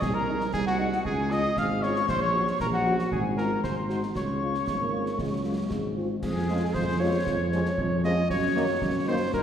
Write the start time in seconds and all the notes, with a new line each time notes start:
0.01 C2 G#4 G#5, concert bass drum, snare
0.14 A#4 A#5
0.28 G#3 D#4
0.41 snare
0.52 C2 G#4 G#5, concert bass drum, snare
0.66 F#4 F#5
0.79 G#3 D#4
0.92 snare
1.04 C#2 G#4 G#5, concert bass drum
1.31 G#3 C#4 F4 D#5 D#6, snare
1.57 G#1 F5 F6, concert bass drum, snare
1.82 G#3 C#4 F4 C#5 C#6, snare
1.96 snare
2.09 A#1 C5 C6, concert bass drum, snare, crash
2.21 C#5 C#6
2.35 F#3 C#4 F#4
2.47 snare
2.60 A#1 A#4 A#5, concert bass drum, snare
2.73 F#4 F#5
2.86 F#3 C#4 F#4
2.99 snare
3.12 G#1 G#4 G#5, concert bass drum
3.37 G#3 C#4 F4 A#4 A#5, snare
3.64 G#1 C5 C6, concert bass drum, snare
3.89 G#3 D#4 F#4 C5 C6, snare
4.03 snare
4.16 C#2 C#5 C#6, concert bass drum, snare
4.41 G#3 C#4 F4
4.54 snare
4.67 G#1 G#3, concert bass drum, snare
4.80 A#3
4.93 G#3 C#4 F4
5.06 snare
5.19 C#2 G#3, concert bass drum, snare
5.32 F#3
5.45 G#3 C#4 F4
5.70 G#1 G#3, concert bass drum, snare
5.96 G#3 C4 C#4 F4
6.22 F2 G#4, concert bass drum, snare, crash
6.49 F3 G#3 C#4 F4
6.74 F2 C5, concert bass drum, snare
7.00 F3 G#3 C#4 F4 C#5
7.27 F2, concert bass drum, snare
7.52 F3 G#3 C#4 F4, snare
7.66 snare
7.78 F2, concert bass drum
8.04 F3 G#3 C#4 F4 D#5, snare
8.30 F#2 C#5, concert bass drum, snare
8.55 D#3 A#3 C#4 D#4
8.82 F#2, concert bass drum, snare
9.07 D#3 A#3 C#4 D#4 C5
9.33 G2 A#4, concert bass drum, snare